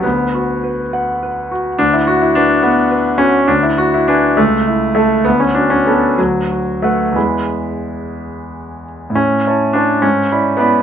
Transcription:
0.03 1.75 D2 soft
0.03 1.50 B3 medium
0.35 0.81 F#4 soft
0.63 1.10 B4 soft
0.93 1.40 F#5 soft
1.23 1.68 B4 soft
1.51 1.79 F#4 soft
1.79 3.45 D2 soft
1.79 1.93 D4 medium
1.93 2.07 E4 medium
2.07 2.21 F#4 medium
2.22 2.36 E4 medium
2.35 2.63 D4 medium
2.35 2.80 B4 soft
2.62 3.19 B3 medium
2.62 3.08 F#5 soft
2.91 3.38 B4 soft
3.18 3.48 C#4 medium
3.18 3.49 F#4 soft
3.48 4.34 D2 soft
3.48 3.63 D4 medium
3.63 3.77 E4 medium
3.78 3.93 E4 soft
3.78 3.93 F#4 medium
3.94 4.08 E4 medium
4.08 4.37 D4 medium
4.08 4.35 B4 soft
4.08 4.35 G#5 soft
4.37 5.23 C#2 medium
4.37 4.93 A3 medium
4.67 5.14 E4 soft
4.95 5.25 A3 medium
4.95 5.22 A4 soft
4.95 5.23 A5 soft
5.25 6.15 D2 soft
5.25 5.40 B3 medium
5.40 5.55 C#4 medium
5.55 5.70 D4 medium
5.55 6.05 F#4 soft
5.70 5.86 C#4 medium
5.86 6.17 B3 medium
5.86 6.15 A4 soft
5.86 6.15 A5 soft
6.18 7.13 D2 soft
6.18 6.82 F#3 medium
6.51 7.03 F#4 soft
6.82 7.15 A3 medium
6.82 7.13 B4 soft
6.82 7.13 F#5 soft
7.12 9.11 E2 soft
7.12 8.84 G#3 soft
7.12 9.11 E4 soft
7.12 9.12 B4 soft
7.12 9.13 B5 soft
9.10 9.42 A2 soft
9.15 9.75 C#4 medium
9.47 9.73 E4 soft
9.47 9.73 C#5 soft
9.47 9.73 A5 soft
9.73 10.03 D4 medium
9.73 10.00 E4 soft
9.73 10.01 C#5 soft
9.73 10.01 A5 soft
10.02 10.30 G#2 soft
10.02 10.58 C#4 medium
10.32 10.57 E4 soft
10.32 10.57 D5 soft
10.32 10.57 B5 soft
10.57 10.82 B3 medium
10.57 10.82 E4 soft
10.57 10.82 D5 soft
10.57 10.82 B5 soft

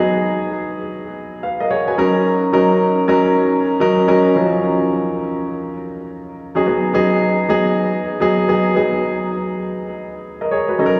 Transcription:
0.00 1.97 F#3 loud
0.00 2.00 B3 medium
0.00 1.98 D#4 medium
0.00 1.88 F#4 medium
0.00 1.71 G#4 loud
1.43 1.60 B4 medium
1.43 1.59 F5 medium
1.60 1.71 A#4 medium
1.60 1.70 D#5 medium
1.71 1.87 G#4 medium
1.71 1.87 C#5 medium
1.71 1.86 F#5 medium
1.88 2.14 F#4 medium
1.88 2.14 B4 medium
1.88 1.97 G#5 medium
1.97 2.48 F#3 medium
1.97 2.48 C#4 medium
1.97 2.48 D#4 medium
1.97 2.49 A#4 loud
1.97 2.24 A#5 medium
2.52 3.03 F#3 medium
2.52 3.03 C#4 medium
2.52 3.03 D#4 medium
2.52 3.03 A#4 loud
3.08 3.70 F#3 loud
3.08 3.70 C#4 medium
3.08 3.71 D#4 medium
3.08 3.71 A#4 loud
3.80 4.04 F#3 loud
3.80 4.04 C#4 medium
3.80 4.04 D#4 medium
3.80 4.04 A#4 loud
4.07 4.31 F#3 medium
4.07 4.31 C#4 medium
4.07 4.31 D#4 medium
4.07 4.32 A#4 loud
4.35 4.40 F3 medium
4.35 5.30 C#4 medium
4.35 5.30 D#4 medium
4.35 5.30 A#4 medium
4.42 5.33 F#3 medium
6.55 6.65 F#3 medium
6.55 6.65 C#4 medium
6.55 6.65 D#4 medium
6.55 6.65 G#4 medium
6.66 6.91 F#3 medium
6.66 6.91 B3 medium
6.66 6.92 D#4 medium
6.66 6.92 G#4 medium
6.94 7.44 F#3 loud
6.94 7.44 B3 medium
6.94 7.44 D#4 medium
6.94 7.44 G#4 loud
7.48 8.11 F#3 medium
7.48 8.11 B3 medium
7.48 8.11 D#4 medium
7.48 8.11 G#4 loud
8.20 8.44 F#3 medium
8.20 8.44 B3 medium
8.20 8.44 D#4 medium
8.20 8.45 G#4 loud
8.48 8.72 F#3 medium
8.48 8.72 B3 medium
8.48 8.72 D#4 medium
8.48 8.72 G#4 loud
8.75 9.70 F#3 medium
8.75 9.70 B3 medium
8.75 9.70 D#4 medium
8.75 9.71 G#4 loud
10.41 10.51 A#4 medium
10.41 10.51 D#5 medium
10.51 10.68 G#4 medium
10.51 10.67 C#5 medium
10.68 10.95 F#4 medium
10.68 10.94 B4 medium
10.78 11.00 F#3 medium
10.78 11.00 C#4 medium
10.78 11.00 D#4 medium
10.78 10.87 A4 medium
10.86 11.00 A#4 loud

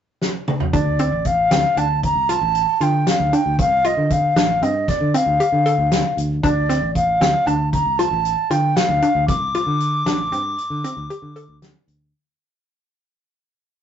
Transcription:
0.22 snare medium
0.48 mid tom medium
0.60 floor tom medium
0.73 1.09 D2 medium
0.73 0.91 D4 medium
0.73 1.28 D5 medium
0.73 kick medium
0.73 closed hi-hat medium
0.99 1.34 C4 medium
0.99 closed hi-hat medium
1.12 1.48 A1 medium
1.25 1.79 F5 medium
1.25 kick medium
1.25 closed hi-hat medium
1.51 1.63 D2 medium
1.51 1.69 C4 medium
1.51 snare medium
1.51 closed hi-hat medium
1.77 2.12 D2 medium
1.77 2.12 D4 medium
1.77 2.04 A5 medium
1.77 closed hi-hat medium
2.03 2.32 A#5 medium
2.03 kick medium
2.03 closed hi-hat medium
2.15 2.39 C2 medium
2.29 2.64 F4 medium
2.29 2.84 A5 medium
2.29 closed hi-hat medium
2.41 2.65 A1 medium
2.55 closed hi-hat medium
2.80 3.04 D3 medium
2.80 3.16 F4 medium
2.80 3.10 G5 medium
2.80 closed hi-hat medium
3.07 3.36 F5 medium
3.07 snare medium
3.07 closed hi-hat medium
3.20 3.32 D2 medium
3.33 3.68 D4 medium
3.33 3.60 G5 medium
3.33 closed hi-hat medium
3.46 3.58 D2 medium
3.59 3.94 C2 medium
3.59 3.87 F5 medium
3.59 kick medium
3.59 closed hi-hat medium
3.85 4.19 F4 medium
3.85 4.13 D#5 medium
3.85 closed hi-hat soft
3.97 4.33 D3 medium
4.10 4.64 F5 medium
4.10 kick medium
4.10 closed hi-hat medium
4.36 4.60 A1 medium
4.36 4.54 D4 medium
4.36 snare loud
4.36 closed hi-hat medium
4.62 4.85 G2 medium
4.62 4.97 C4 medium
4.62 4.90 D#5 medium
4.62 closed hi-hat soft
4.88 5.17 D5 medium
4.88 kick medium
4.88 snare soft
4.88 closed hi-hat soft
5.01 5.13 D3 medium
5.14 5.32 C4 medium
5.14 6.18 F5 medium
5.14 closed hi-hat medium
5.26 5.38 D2 medium
5.40 5.57 G4 medium
5.40 closed hi-hat medium
5.52 5.76 D3 medium
5.66 6.01 A4 medium
5.66 closed hi-hat medium
5.78 6.02 D2 medium
5.92 snare loud
5.92 closed hi-hat medium
6.17 6.41 D2 medium
6.17 closed hi-hat medium
6.43 6.79 D2 medium
6.43 6.61 D4 medium
6.43 6.92 D5 medium
6.43 kick medium
6.43 closed hi-hat medium
6.69 7.04 C4 medium
6.69 snare soft
6.69 closed hi-hat medium
6.82 7.17 A1 medium
6.95 7.48 F5 medium
6.95 kick medium
6.95 closed hi-hat medium
7.21 7.33 D2 medium
7.21 7.39 C4 medium
7.21 snare medium
7.21 closed hi-hat medium
7.47 7.82 D2 medium
7.47 7.82 D4 medium
7.47 7.72 A5 medium
7.47 closed hi-hat medium
7.73 8.00 A#5 medium
7.73 kick medium
7.73 closed hi-hat medium
7.85 8.09 C2 medium
7.98 8.34 F4 medium
7.98 8.52 A5 medium
7.98 closed hi-hat medium
8.11 8.35 A1 medium
8.25 closed hi-hat medium
8.50 8.74 D3 medium
8.50 8.85 F4 medium
8.50 8.78 G5 medium
8.50 closed hi-hat medium
8.76 9.28 F5 medium
8.76 snare loud
8.76 closed hi-hat medium
8.89 9.01 D2 medium
9.02 9.37 D4 medium
9.02 closed hi-hat medium
9.15 9.27 D2 medium
9.28 11.58 D6 loud
9.28 kick medium
9.28 closed hi-hat medium
9.54 9.89 F4 medium
9.54 closed hi-hat medium
9.67 10.02 D3 medium
9.80 closed hi-hat soft
10.05 10.29 A1 medium
10.05 10.24 D4 medium
10.05 snare loud
10.05 closed hi-hat medium
10.32 10.55 G2 medium
10.32 10.67 C4 medium
10.32 closed hi-hat medium
10.58 closed hi-hat medium
10.70 10.82 D3 medium
10.84 11.02 C4 medium
10.84 closed hi-hat medium
10.97 11.08 D2 medium
11.10 11.28 G4 medium
11.10 closed hi-hat medium
11.22 11.46 D3 medium
11.36 11.71 A4 medium
11.36 closed hi-hat medium
11.48 11.72 D2 medium
11.62 snare loud
11.62 closed hi-hat medium
11.88 12.11 D2 medium
11.88 closed hi-hat medium

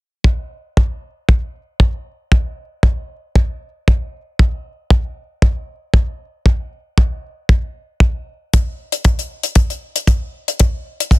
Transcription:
0.24 kick loud
0.77 kick loud
1.29 kick loud
1.80 kick medium
2.32 kick loud
2.83 kick loud
3.35 kick loud
3.88 kick loud
4.39 kick loud
4.90 kick loud
5.42 kick loud
5.94 kick loud
6.46 kick loud
6.98 kick loud
7.49 kick loud
8.00 kick loud
8.53 kick loud
8.53 closed hi-hat medium
8.92 closed hi-hat medium
9.04 kick loud
9.04 closed hi-hat medium
9.19 closed hi-hat medium
9.43 closed hi-hat medium
9.55 kick loud
9.55 closed hi-hat medium
9.70 closed hi-hat soft
9.96 closed hi-hat medium
10.07 kick loud
10.07 closed hi-hat medium
10.48 closed hi-hat medium
10.59 kick loud
10.59 closed hi-hat medium
11.00 closed hi-hat medium
11.11 kick loud
11.11 closed hi-hat medium

